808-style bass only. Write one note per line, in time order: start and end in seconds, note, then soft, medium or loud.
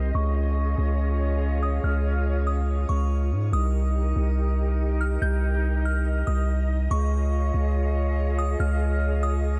0.00 0.12 C2 loud
0.14 0.75 C#2 loud
0.78 1.79 C#2 loud
1.83 2.85 C#2 loud
2.89 3.33 C#2 loud
3.31 3.51 G#2 medium
3.52 4.13 C2 loud
4.16 5.17 C2 loud
5.22 6.23 C2 loud
6.27 6.88 C2 loud
6.91 7.51 C#2 loud
7.54 8.55 C#2 loud
8.59 9.60 C#2 loud